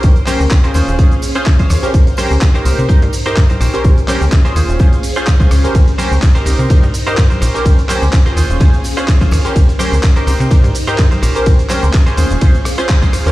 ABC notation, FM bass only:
X:1
M:4/4
L:1/16
Q:"Swing 16ths" 1/4=126
K:Bbdor
V:1 name="FM bass" clef=bass
B,,, z2 D,, z2 E,, E,,, E,, z4 z E,, z | B,,, z2 D,, z2 C,, C, G,, G,, z G,, G,, z B,,, z | B,,, z2 D,, z2 E,, E,,, E,, z4 D,, D,, z | B,,, z2 D,, z2 C,, C, G,, G,, z G,, G,, z B,,, z |
B,,, z2 D,, z2 E,, E,,, E,, z4 z E,, z | B,,, z2 D,, z2 C,, C, G,, G,, z G,, G,, z B,,, z | B,,, z2 D,, z2 E,, E,,, B,,, z4 z E,, E,, |]